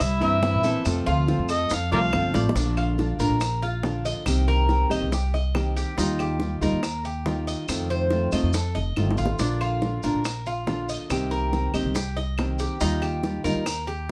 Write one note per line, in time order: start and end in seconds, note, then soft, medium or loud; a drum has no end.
0.00 0.20 C2 loud
0.00 0.20 E4 medium
0.00 0.23 E5 medium
0.00 muted nylon-string guitar stroke medium
0.00 high bongo medium
0.00 claves medium
0.00 maracas medium
0.21 0.55 G2 medium
0.21 0.40 E3 medium
0.21 0.41 A#3 medium
0.21 0.41 C4 medium
0.21 0.41 E4 medium
0.21 0.42 A#4 medium
0.21 0.83 E5 loud
0.21 maracas soft
0.42 0.63 E3 medium
0.42 0.63 A#3 medium
0.42 0.63 C4 medium
0.42 0.63 E4 medium
0.42 high bongo medium
0.42 low bongo medium
0.42 maracas soft
0.54 0.74 A#1 medium
0.63 0.85 E3 medium
0.63 0.85 A#3 medium
0.63 0.85 C4 medium
0.63 0.84 E4 medium
0.63 1.06 A4 medium
0.63 maracas medium
0.85 1.06 F2 loud
0.85 1.27 C3 medium
0.85 1.26 F3 medium
0.85 1.27 A3 medium
0.85 1.27 C4 medium
0.85 1.28 F4 medium
0.85 high bongo medium
0.85 claves medium
0.85 maracas loud
1.06 1.38 D2 medium
1.06 1.48 F4 loud
1.06 high bongo soft
1.06 maracas soft
1.28 1.70 F3 soft
1.28 1.70 A3 medium
1.28 1.70 C4 medium
1.28 1.70 F4 medium
1.28 high bongo medium
1.28 maracas soft
1.39 1.69 F2 medium
1.49 1.91 A4 medium
1.49 1.76 D#5 medium
1.49 claves medium
1.49 maracas medium
1.70 1.91 F2 loud
1.70 muted nylon-string guitar stroke medium
1.70 high bongo medium
1.70 maracas medium
1.74 1.92 F5 medium
1.91 2.13 C2 medium
1.91 2.12 F3 medium
1.91 2.12 A3 medium
1.91 2.13 C4 medium
1.91 2.12 F4 medium
1.91 1.99 A#4 medium
1.91 1.99 D5 medium
1.91 2.34 F5 medium
1.91 2.42 F5 loud
1.91 high bongo soft
1.91 maracas soft
2.13 2.33 G1 medium
2.13 2.34 F3 medium
2.13 2.34 A3 medium
2.13 2.33 C4 medium
2.13 2.33 F4 medium
2.13 high bongo medium
2.13 low bongo medium
2.13 claves medium
2.13 maracas soft
2.34 2.54 A1 medium
2.34 2.55 F3 medium
2.34 2.55 A3 medium
2.34 2.55 C4 medium
2.34 2.55 F4 medium
2.34 2.55 D5 medium
2.34 high bongo loud
2.34 maracas medium
2.49 low bongo medium
2.55 3.17 A#1 loud
2.55 2.97 D3 medium
2.55 2.97 A#3 medium
2.55 2.77 D4 medium
2.55 2.98 D4 medium
2.55 2.99 F4 medium
2.55 high bongo medium
2.55 maracas medium
2.77 3.19 F4 medium
2.77 claves medium
2.77 maracas soft
2.98 3.19 D3 soft
2.98 3.19 A#3 medium
2.98 3.19 D4 medium
2.98 3.18 F4 medium
2.98 high bongo medium
2.98 maracas soft
3.19 3.29 A#1 medium
3.19 3.40 A#3 medium
3.19 3.41 D4 medium
3.19 3.40 F4 medium
3.19 3.61 A#4 medium
3.19 maracas medium
3.30 4.12 A#1 medium
3.41 muted nylon-string guitar stroke medium
3.41 high bongo medium
3.41 claves medium
3.41 maracas medium
3.62 4.04 F4 medium
3.62 maracas soft
3.83 4.26 D3 soft
3.83 4.26 A#3 medium
3.83 4.26 D4 medium
3.83 4.26 F4 medium
3.83 high bongo medium
3.83 low bongo medium
3.83 maracas soft
4.05 4.47 D#5 medium
4.05 maracas medium
4.26 4.87 C2 loud
4.26 4.68 C3 medium
4.26 4.68 D#3 medium
4.26 4.68 A#3 medium
4.26 4.69 C4 medium
4.26 4.69 G4 medium
4.26 high bongo medium
4.26 claves medium
4.26 maracas medium
4.48 4.89 A#4 medium
4.48 high bongo soft
4.48 maracas soft
4.69 4.90 D#3 soft
4.69 4.90 A#3 medium
4.69 4.89 C4 medium
4.69 4.89 G4 medium
4.69 high bongo medium
4.69 maracas soft
4.90 5.01 C2 medium
4.90 5.11 D#3 medium
4.90 5.11 A#3 medium
4.90 5.11 C4 medium
4.90 5.11 G4 medium
4.90 5.12 D#5 medium
4.90 claves medium
4.90 maracas medium
5.02 5.83 C2 medium
5.12 5.33 G4 medium
5.12 muted nylon-string guitar stroke medium
5.12 high bongo medium
5.12 maracas medium
5.34 5.75 D#5 medium
5.34 high bongo soft
5.34 maracas soft
5.54 5.96 D#3 medium
5.54 5.97 A#3 medium
5.54 5.97 C4 medium
5.54 5.97 G4 medium
5.54 high bongo medium
5.54 low bongo medium
5.54 claves medium
5.54 maracas soft
5.76 5.97 G4 medium
5.76 high bongo soft
5.76 maracas medium
5.97 6.59 D#2 loud
5.97 6.39 D#3 medium
5.97 6.39 G3 medium
5.97 6.19 D#4 medium
5.97 6.40 D#4 medium
5.97 6.40 F4 medium
5.97 high bongo medium
5.97 maracas medium
6.19 6.61 G4 medium
6.19 claves medium
6.19 maracas soft
6.40 6.61 D#3 soft
6.40 6.61 G3 soft
6.40 6.61 D#4 medium
6.40 6.60 F4 medium
6.40 high bongo medium
6.40 maracas soft
6.61 6.72 D#2 medium
6.61 6.82 G3 medium
6.61 6.82 D#4 medium
6.61 6.82 F4 medium
6.61 7.04 A#4 medium
6.61 maracas medium
6.72 7.54 D#2 medium
6.83 muted nylon-string guitar stroke medium
6.83 high bongo medium
6.83 claves medium
6.83 maracas medium
7.05 7.46 G4 medium
7.05 maracas soft
7.26 7.67 D#3 medium
7.26 7.68 G3 medium
7.26 7.68 D#4 medium
7.26 7.68 F4 medium
7.26 high bongo medium
7.26 low bongo medium
7.26 maracas soft
7.47 7.89 D#5 medium
7.47 maracas medium
7.68 8.29 F2 loud
7.68 8.10 C3 medium
7.68 8.10 D#3 medium
7.68 8.10 A3 medium
7.68 8.11 C4 medium
7.68 8.11 F4 medium
7.68 high bongo medium
7.68 claves medium
7.68 maracas loud
7.90 8.31 C5 medium
7.90 high bongo soft
7.90 maracas soft
8.11 8.31 D#3 soft
8.11 8.32 A3 medium
8.11 8.32 C4 soft
8.11 8.31 F4 medium
8.11 high bongo medium
8.11 maracas soft
8.32 8.43 F2 medium
8.32 8.53 D#3 medium
8.32 8.53 A3 medium
8.32 8.53 C4 medium
8.32 8.53 F4 medium
8.32 8.53 D#5 medium
8.32 claves medium
8.32 maracas medium
8.43 8.74 F2 medium
8.53 8.75 A4 medium
8.53 muted nylon-string guitar stroke medium
8.53 high bongo medium
8.53 maracas medium
8.75 8.95 F1 medium
8.75 9.16 D#5 medium
8.75 high bongo soft
8.75 maracas soft
8.96 9.16 G1 medium
8.96 9.38 D#3 medium
8.96 9.39 A3 medium
8.96 9.39 C4 medium
8.96 9.39 F4 medium
8.96 high bongo medium
8.96 claves medium
8.96 maracas soft
9.11 high bongo medium
9.17 9.37 A1 medium
9.17 9.39 F4 medium
9.17 maracas medium
9.26 low bongo medium
9.39 10.00 A#1 loud
9.39 9.81 D3 medium
9.39 9.81 A#3 medium
9.39 9.60 D4 medium
9.39 9.82 D4 medium
9.39 9.82 F4 medium
9.39 high bongo medium
9.39 maracas medium
9.61 10.02 F4 medium
9.61 claves medium
9.61 maracas soft
9.81 10.03 D3 soft
9.81 10.03 A#3 medium
9.81 10.04 D4 medium
9.81 10.03 F4 medium
9.81 high bongo medium
9.81 maracas soft
10.03 10.14 A#1 medium
10.03 10.24 A#3 soft
10.03 10.24 D4 medium
10.03 10.24 F4 medium
10.03 10.45 A#4 medium
10.03 maracas medium
10.14 10.96 A#1 medium
10.25 muted nylon-string guitar stroke medium
10.25 high bongo medium
10.25 claves medium
10.25 maracas medium
10.46 10.88 F4 medium
10.46 maracas soft
10.67 11.09 D3 medium
10.67 11.09 A#3 medium
10.67 11.10 D4 medium
10.67 11.10 F4 medium
10.67 high bongo medium
10.67 low bongo medium
10.67 maracas soft
10.89 11.30 D#5 medium
10.89 maracas medium
11.10 11.71 C2 medium
11.10 11.52 C3 medium
11.10 11.52 D#3 medium
11.10 11.52 A#3 medium
11.10 11.52 C4 medium
11.10 11.53 G4 medium
11.10 high bongo medium
11.10 claves medium
11.10 maracas medium
11.31 11.73 A#4 medium
11.31 high bongo soft
11.31 maracas soft
11.53 11.73 D#3 medium
11.53 11.73 A#3 soft
11.53 11.73 C4 soft
11.53 11.73 G4 medium
11.53 high bongo medium
11.53 maracas soft
11.74 11.84 C2 medium
11.74 11.94 D#3 medium
11.74 11.95 A#3 medium
11.74 11.95 C4 medium
11.74 11.94 G4 medium
11.74 11.95 D#5 medium
11.74 claves medium
11.74 maracas medium
11.84 12.66 C2 medium
11.95 12.16 G4 medium
11.95 muted nylon-string guitar stroke medium
11.95 high bongo medium
11.95 maracas medium
12.17 12.58 D#5 medium
12.17 high bongo soft
12.17 maracas soft
12.38 12.79 D#3 medium
12.38 12.80 A#3 medium
12.38 12.80 C4 medium
12.38 12.81 G4 medium
12.38 high bongo medium
12.38 low bongo medium
12.38 claves medium
12.38 maracas soft
12.59 12.80 G4 medium
12.59 high bongo soft
12.59 maracas medium
12.80 13.42 D#2 loud
12.80 13.22 D#3 medium
12.80 13.22 G3 medium
12.80 13.01 D#4 medium
12.80 13.23 D#4 medium
12.80 13.23 F4 medium
12.80 high bongo medium
12.80 maracas medium
13.02 13.43 G4 medium
13.02 claves medium
13.02 maracas soft
13.23 13.44 D#3 soft
13.23 13.44 G3 medium
13.23 13.45 D#4 medium
13.23 13.44 F4 medium
13.23 high bongo medium
13.23 maracas soft
13.44 13.54 D#2 medium
13.44 13.65 G3 medium
13.44 13.65 D#4 medium
13.44 13.65 F4 medium
13.44 13.86 A#4 medium
13.44 maracas medium
13.55 14.11 D#2 medium
13.66 muted nylon-string guitar stroke medium
13.66 high bongo medium
13.66 claves medium
13.66 maracas medium
13.87 14.11 G4 medium
13.87 maracas soft